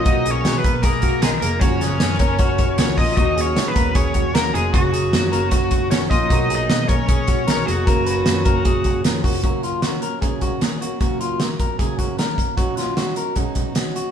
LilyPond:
<<
  \new Staff \with { instrumentName = "Lead electric guitar" } { \time 4/4 \key fis \major \tempo 4 = 153 \tuplet 3/2 { dis''4 cis''8~ cis''8 b'4 } ais'4 gis'8 ais'8 | cis''2. cis''8 dis''8 | \tuplet 3/2 { dis''4 cis''8~ cis''8 b'4 } cis''4 ais'8 gis'8 | fis'2. cis''8 dis''8~ |
\tuplet 3/2 { dis''4 dis''8~ } dis''8 cis''2 fis'8~ | fis'2. r4 | r1 | r1 |
r1 | }
  \new Staff \with { instrumentName = "Clean electric guitar" } { \time 4/4 \key fis \major fis'8 gis'4 ais'8 gis'8 fis'8 ais'8 gis'8 | fis'8 gis'4 ais'8 fis'4. eis'8 | fis'8 gis'4 ais'8 gis'8 fis'8 ais'8 gis'8 | fis'8 gis'4 ais'8 fis'4. eis'8 |
fis'8 gis'4 ais'8 gis'8 fis'8 ais'8 gis'8 | ais'8 b'4 ais'8 gis'4. fis'8 | fis'8 eis'8 fis'8 ais'8 gis'8 fis'8 gis'8 fis'8 | fis'8 eis'8 fis'8 ais'8 gis'8 fis'8 ais'4 |
fis'8 eis'8 fis'8 ais'8 gis'8 fis'8 gis'8 fis'8 | }
  \new Staff \with { instrumentName = "Trumpet" } { \time 4/4 \key fis \major \tuplet 3/2 { dis'4 cis'8~ cis'8 b4 } ais4 gis8 ais8 | cis'2. cis'8 dis'8 | \tuplet 3/2 { dis'4 cis'8~ cis'8 b4 } cis'4 ais8 gis8 | fis2. cis'8 dis'8~ |
\tuplet 3/2 { dis'4 dis'8~ } dis'8 cis'2 fis8~ | fis2. r4 | r1 | r1 |
r1 | }
  \new Staff \with { instrumentName = "Steel-string acoustic guitar" } { \time 4/4 \key fis \major <b, fis ais dis' ais'>4 <fis ais dis' ais'>8 <ais dis' ais'>4. <fis ais dis' ais'>8 <ais dis' ais'>8 | <fis, cis eis ais cis' ais'>4 <eis ais cis' ais'>8 <ais cis' ais'>4. <eis ais cis' ais'>8 <eis ais cis' ais'>8 | <dis fis ais cis' fis'>4 <fis ais cis' fis'>8 <ais cis' fis'>4. <fis ais cis' fis'>8 <ais cis' fis'>8 | <fis, cis ais cis' ais'>4 <eis ais cis' ais'>8 <ais cis' ais'>4. <eis ais cis' ais'>8 <eis ais cis' ais'>8 |
<b, fis ais dis' ais'>4 <fis ais dis' ais'>8 <ais dis' ais'>4. <fis ais dis' ais'>8 <ais dis'>8 | <fis, cis ais cis' ais'>4 <eis ais cis' ais'>8 <ais cis' ais'>4. <eis ais cis' ais'>8 <eis ais cis' ais'>8 | <fis, cis fis ais cis' ais'>4 <fis ais cis' ais'>4 <fis, cis fis ais cis' ais'>4 <fis ais cis' ais'>8 <fis ais cis' ais'>8 | <fis, cis fis ais cis' ais'>4 <fis ais cis' ais'>4 <fis, cis fis ais cis' ais'>4 <fis ais cis' ais'>4 |
<b, fis cis' dis' fis'>4 <fis cis' dis' fis'>4 <b, fis cis' dis' fis'>4 <fis cis' dis' fis'>4 | }
  \new Staff \with { instrumentName = "Picked electric bass" } { \clef bass \time 4/4 \key fis \major b,,8 b,,8 b,8 b,,2 eis,,8 | fis,,8 fis,,8 fis,8 fis,,4. cis,8 ais,,8 | dis,8 dis,8 dis8 dis,2 eis,,8 | fis,,8 fis,,8 fis,8 fis,,2 ais,,8 |
b,,8 b,,8 b,8 b,,2 eis,,8 | fis,,8 fis,,8 fis,8 fis,,2 eis,,8 | r1 | r1 |
r1 | }
  \new DrumStaff \with { instrumentName = "Drums" } \drummode { \time 4/4 <hh bd>8 hh8 <hh sn>8 <hh bd>8 <hh bd>8 <hh bd>8 <hh sn>8 hh8 | <hh bd>8 <hh sn>8 <hh sn>8 <hh bd>8 <hh bd>8 <hh bd>8 <hh sn>8 <hho bd>8 | <hh bd>8 hh8 <hh sn>8 <hh bd>8 <hh bd>8 <hh bd>8 <hh sn>8 hh8 | <hh bd>8 hh8 <hh sn>8 hh8 <hh bd>8 <hh bd>8 <hh sn>8 <hh bd>8 |
<hh bd>8 hh8 <hh sn>8 <hh bd>8 <hh bd>8 <hh bd>8 <hh sn>8 hh8 | <hh bd>8 hh8 <hh sn>8 <hh bd>8 <hh bd>8 <hh bd>8 <hh sn>8 <hho bd>8 | <hh bd>8 hh8 <hh sn>8 hh8 <hh bd>8 <hh bd>8 <hh sn>8 hh8 | <hh bd>8 hh8 <hh sn>8 <hh bd>8 <hh bd>8 <hh bd>8 <hh sn>8 <hh bd>8 |
<hh bd>8 <hh sn>8 <hh sn>8 hh8 <hh bd>8 <hh bd>8 <hh sn>8 hh8 | }
>>